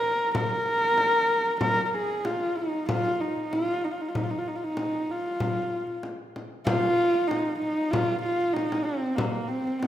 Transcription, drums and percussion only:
0.03 frame drum
0.35 frame drum
0.82 frame drum
0.98 frame drum
1.61 frame drum
1.93 frame drum
2.25 frame drum
2.57 frame drum
2.89 frame drum
3.37 frame drum
3.53 frame drum
4.15 frame drum
4.46 frame drum
4.77 frame drum
5.09 frame drum
5.40 frame drum
5.87 frame drum
6.03 frame drum
6.36 frame drum
6.67 frame drum
7.15 frame drum
7.31 frame drum
7.62 frame drum
7.93 frame drum
8.41 frame drum
8.56 frame drum
8.72 frame drum
9.18 frame drum
9.67 frame drum
9.83 frame drum

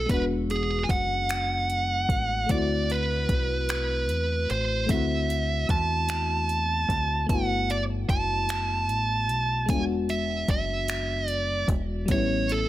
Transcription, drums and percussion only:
0.09 kick, closed hi-hat
0.50 closed hi-hat
0.89 kick, closed hi-hat
1.29 finger snap, closed hi-hat
1.70 closed hi-hat
2.09 kick, closed hi-hat
2.49 kick, closed hi-hat
2.90 closed hi-hat
3.29 kick, closed hi-hat
3.69 finger snap, closed hi-hat
4.09 closed hi-hat
4.50 closed hi-hat
4.89 kick, closed hi-hat
5.30 closed hi-hat
5.69 kick, closed hi-hat
6.09 finger snap, closed hi-hat
6.49 closed hi-hat
6.89 kick, closed hi-hat
7.29 kick, closed hi-hat
7.70 closed hi-hat
8.09 kick, closed hi-hat
8.49 finger snap, closed hi-hat
8.89 closed hi-hat
9.29 closed hi-hat
9.69 kick, closed hi-hat
10.09 closed hi-hat
10.48 kick, closed hi-hat
10.88 finger snap, closed hi-hat
11.28 closed hi-hat
11.68 kick, closed hi-hat
12.08 kick, closed hi-hat
12.49 closed hi-hat

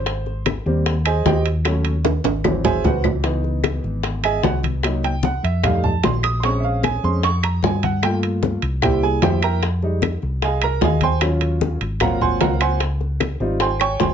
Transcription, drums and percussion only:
0.06 high bongo, high conga, high timbale
0.26 high bongo, high conga
0.46 high bongo, high conga, high timbale, low timbale, claves
0.66 high bongo, high conga
0.86 high bongo, high conga, high timbale
1.05 high bongo, high conga, high timbale, claves
1.26 high bongo, low bongo, high conga, low timbale
1.46 high timbale
1.65 high bongo, high conga, high timbale, claves
1.85 high bongo, high conga, high timbale
2.05 high bongo, high conga, high timbale
2.24 high bongo, high conga, high timbale
2.44 high bongo, high conga, low timbale, claves
2.64 low bongo, low conga, low timbale
2.84 low bongo, low conga, low timbale
3.04 low bongo, low conga, low timbale, claves
3.24 high bongo, high conga, high timbale
3.44 high bongo, high conga
3.64 high bongo, high conga, high timbale, low timbale, claves
3.84 high bongo, high conga
4.03 high bongo, high conga, high timbale
4.23 high bongo, high conga, high timbale, claves
4.43 high bongo, low bongo, high conga, low timbale
4.63 high conga, high timbale
4.83 high bongo, high conga, high timbale, claves
5.03 high bongo, high conga, high timbale
5.23 high bongo, high conga, low timbale
5.43 high conga, high timbale
5.63 high bongo, high conga, low conga, high timbale, claves
5.84 high bongo, high conga, low conga
6.03 high bongo, low bongo, high conga, high timbale, low timbale
6.23 high bongo, high conga, high timbale, claves
6.43 high bongo, high conga, high timbale
6.63 high bongo, high conga
6.83 high bongo, high conga, high timbale, low timbale, claves
7.04 high bongo, high conga
7.23 high bongo, high conga, high timbale
7.43 high bongo, high conga, high timbale, claves
7.63 high bongo, low bongo, high conga, low timbale
7.83 high conga, high timbale
8.03 high bongo, high conga, high timbale, claves
8.23 high bongo, high conga, high timbale
8.43 high bongo, high conga, low timbale
8.62 high conga, high timbale
8.82 high bongo, high conga, low conga, high timbale, claves
9.02 high bongo, high conga
9.22 high bongo, low bongo, high conga, high timbale, low timbale
9.42 high bongo, high conga, high timbale, claves
9.62 high bongo, high conga, high timbale
9.82 high bongo, high conga
10.02 high bongo, high conga, high timbale, low timbale, claves
10.22 high bongo, high conga
10.42 high bongo, high conga, high timbale
10.62 high bongo, high conga, high timbale, claves
10.81 high bongo, low bongo, high conga, low timbale
11.01 high conga, high timbale
11.21 high bongo, high conga, high timbale, claves
11.41 high bongo, high conga, high timbale
11.61 high bongo, high conga, low timbale
11.81 high conga, high timbale
12.00 high bongo, high conga, low conga, high timbale, claves
12.21 high bongo, high conga, low conga
12.41 high bongo, low bongo, high conga, high timbale, low timbale
12.61 high bongo, high conga, high timbale, claves
12.80 high bongo, high conga, high timbale
13.01 high bongo, high conga
13.20 high bongo, high conga, high timbale, low timbale, claves
13.40 high bongo, high conga
13.60 high bongo, high conga, high timbale
13.80 high bongo, high conga, high timbale, claves
14.00 high bongo, low bongo, high conga, low timbale

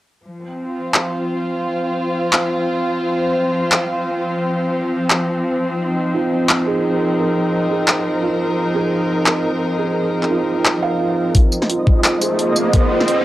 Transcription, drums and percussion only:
0.94 clap
2.33 clap
3.72 clap
5.10 clap
6.49 clap
7.88 clap
9.26 clap
10.23 clap
10.65 clap
11.35 kick, closed hi-hat
11.52 tambourine
11.62 snare
11.70 closed hi-hat
11.87 kick
12.04 clap, closed hi-hat
12.21 closed hi-hat, tambourine
12.39 closed hi-hat
12.56 tambourine
12.73 kick, closed hi-hat
13.00 snare
13.08 closed hi-hat

